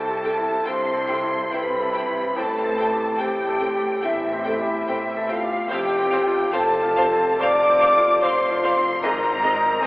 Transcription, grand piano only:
0.00 0.62 C2 soft
0.00 0.93 C4 soft
0.00 0.37 E4 soft
0.00 0.28 C5 soft
0.11 0.56 A4 soft
0.37 0.83 E4 soft
0.66 1.11 G2 soft
0.93 1.40 C4 soft
1.22 1.68 E4 soft
1.51 1.97 C5 soft
1.80 2.25 A4 soft
2.08 2.36 E4 soft
2.36 3.99 A1 medium
2.64 3.09 C4 soft
2.92 3.36 G4 soft
3.20 3.64 C5 soft
3.49 3.93 A4 soft
3.76 4.21 G4 soft
4.05 4.49 E2 soft
4.33 4.77 C4 soft
4.61 5.05 G4 soft
4.89 5.32 C5 soft
5.17 5.60 A4 soft
5.43 5.71 G4 soft
5.71 7.37 F2 medium
5.99 6.43 C4 soft
6.26 6.71 F4 soft
6.54 7.00 C5 soft
6.83 7.29 F4 soft
7.12 7.58 C4 soft
7.41 7.86 C3 soft
7.70 8.14 C4 soft
7.97 8.41 F4 soft
8.24 8.67 C5 soft
8.51 8.93 F4 soft
8.77 9.04 C4 soft
9.04 9.87 G#2 medium
9.29 9.72 C4 medium
9.56 9.87 D#4 medium
9.82 9.87 C5 medium

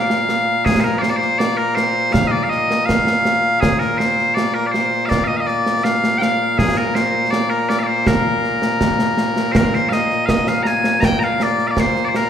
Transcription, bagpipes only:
0.00 12.30 A#2 medium
0.00 12.30 A#3 medium
0.00 0.65 F5 loud
0.65 0.80 G#4 loud
0.80 0.98 A#4 medium
0.80 0.84 C5 medium
0.98 1.10 C5 medium
0.98 1.02 D5 medium
1.10 1.16 D5 medium
1.16 1.39 C5 loud
1.39 1.57 D5 loud
1.57 1.75 A#4 medium
1.75 2.13 C5 loud
2.13 2.27 F5 loud
2.27 2.43 D5 medium
2.27 2.31 D#5 medium
2.43 2.49 F5 medium
2.49 2.86 D#5 medium
2.86 3.60 F5 loud
3.60 3.79 G#4 loud
3.79 3.98 A#4 medium
3.98 4.35 C5 medium
4.35 4.54 D5 medium
4.54 4.67 A#4 medium
4.67 4.72 D5 medium
4.72 5.06 C5 medium
5.06 5.24 D5 loud
5.06 5.09 F5 loud
5.24 5.37 D#5 medium
5.24 5.27 F5 medium
5.37 5.46 D#5 medium
5.37 5.40 F5 medium
5.46 5.84 D5 medium
5.84 6.18 F5 loud
6.18 6.58 F5 loud
6.18 6.21 G5 loud
6.58 6.77 G#4 medium
6.77 6.95 A#4 medium
6.95 7.31 C5 medium
7.31 7.50 D5 medium
7.50 7.69 A#4 medium
7.69 7.79 D5 medium
7.79 7.83 F5 medium
7.83 8.07 C5 medium
7.83 7.87 D5 medium
8.07 9.52 A#4 medium
9.52 9.56 C5 medium
9.56 9.74 A#4 medium
9.74 9.89 C5 medium
9.89 10.26 D#5 medium
9.89 9.93 F5 medium
10.26 10.48 D#5 medium
10.26 10.29 F5 medium
10.48 10.63 F5 medium
10.63 10.67 A#5 loud
10.67 11.00 G#5 loud
11.00 11.04 A#5 loud
11.04 11.19 G5 loud
11.19 11.23 A#5 medium
11.23 11.43 F5 medium
11.43 11.67 D5 medium
11.67 11.80 D5 medium
11.67 11.71 F5 medium
11.80 12.05 C5 medium
12.05 12.16 C5 medium
12.05 12.09 D5 medium
12.16 12.30 A#4 medium

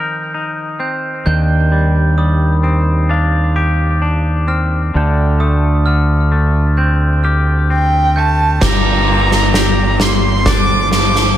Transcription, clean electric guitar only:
0.00 0.81 F3 soft
0.00 0.79 C4 medium
0.00 0.33 D#4 medium
0.00 1.27 A#4 soft
0.34 1.27 D#4 soft
0.80 2.63 C4 medium
1.26 3.56 D#3 medium
1.72 2.18 G3 medium
2.18 4.94 G3 medium
2.63 4.46 C4 medium
3.09 4.01 D4 medium
3.56 5.43 G4 medium
4.02 6.77 D4 medium
4.48 4.94 C4 medium
4.94 5.86 D3 medium
5.40 6.31 A3 soft
5.87 8.16 D3 medium
6.32 8.16 A3 medium
6.78 7.69 C4 medium
7.24 8.62 G4 medium
7.70 8.62 C4 medium
8.17 8.62 A3 soft
8.62 10.92 G2 medium
9.08 9.99 A#3 medium
9.54 11.38 G4 medium
10.01 11.37 A#3 medium
10.46 11.38 D4 medium
10.91 11.38 F3 medium

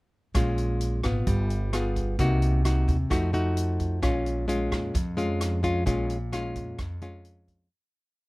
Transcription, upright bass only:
0.35 1.00 A#1 medium
1.04 1.25 G#1 medium
1.27 2.15 G1 medium
2.19 2.84 C2 medium
2.88 3.09 D#2 medium
3.11 3.99 F2 medium
4.03 4.68 A#1 medium
4.71 4.93 F2 medium
4.95 5.83 F2 medium
5.87 6.52 A#1 medium
6.56 6.77 F2 medium
6.79 7.67 F2 medium

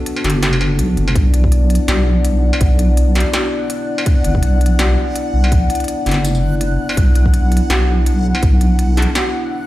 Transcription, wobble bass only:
0.24 0.81 F#1 medium
0.79 0.96 B1 medium
0.97 1.14 F#1 medium
1.15 1.79 B1 loud
1.88 2.52 B1 loud
2.61 3.24 B1 loud
4.25 4.41 F#1 loud
4.43 4.96 B1 loud
5.34 5.69 B1 medium
6.06 6.78 F#1 medium
6.97 7.61 B1 loud
7.70 8.34 B1 loud
8.43 9.06 B1 loud

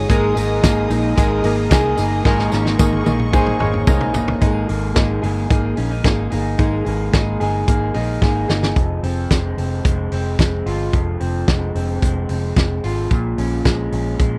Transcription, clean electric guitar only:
0.00 0.10 G#3 medium
0.00 0.36 D#4 medium
0.00 0.10 G#4 medium
0.10 2.25 G#3 medium
0.10 1.17 G#4 medium
0.37 0.90 D#4 medium
0.63 1.44 A#3 medium
0.90 2.52 D#4 medium
1.17 1.71 G#4 medium
1.44 1.98 A#3 medium
1.71 2.25 G#4 medium
1.98 2.78 A#3 medium
2.25 4.41 G#3 medium
2.25 3.33 G#4 medium
2.52 2.65 C#4 medium
2.65 3.05 D#4 soft
2.79 3.60 A#3 medium
3.06 4.96 D#4 medium
3.33 3.87 G#4 medium
3.60 4.14 A#3 medium
3.88 4.72 G#4 medium
4.14 4.68 A#3 medium
4.41 6.58 G#3 medium
4.69 5.49 A#3 medium
4.96 5.77 D#4 medium
5.23 6.04 G#4 medium
5.50 6.85 A#3 medium
5.77 5.91 C#4 medium
5.91 6.30 D#4 soft
6.05 7.40 G#4 medium
6.32 7.12 D#4 medium
6.59 9.31 G#3 medium
6.86 7.66 A#3 medium
7.13 7.94 D#4 medium
7.40 8.21 G#4 medium
7.67 8.81 A#3 medium
7.94 8.48 D#4 medium
8.22 10.66 G#4 medium
8.49 9.03 D#4 medium
8.76 10.92 F2 medium
9.03 9.56 C4 medium
9.31 9.84 G#3 medium
9.57 10.11 C4 soft
9.85 10.39 G#3 medium
10.12 11.19 C4 medium
10.39 11.48 G#3 medium
10.66 12.83 F4 medium
10.93 13.10 F2 medium
11.20 11.74 C4 medium
11.48 12.02 G#3 medium
11.75 12.28 C4 soft
12.02 12.56 G#3 medium
12.29 13.16 C4 medium
12.57 13.65 G#3 medium
12.84 14.38 F4 medium
13.11 14.38 A#2 medium
13.38 13.91 C#4 medium
13.65 14.19 G#3 medium
13.92 14.38 C#4 medium
14.19 14.38 G#3 medium

